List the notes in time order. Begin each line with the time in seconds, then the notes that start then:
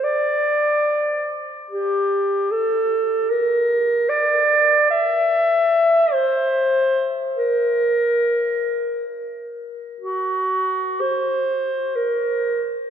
0.04 D5
1.71 G4
2.52 A4
3.30 A#4
4.09 D5
4.91 E5
6.13 C5
7.36 A#4
10.01 F#4
11.01 C5
11.96 A#4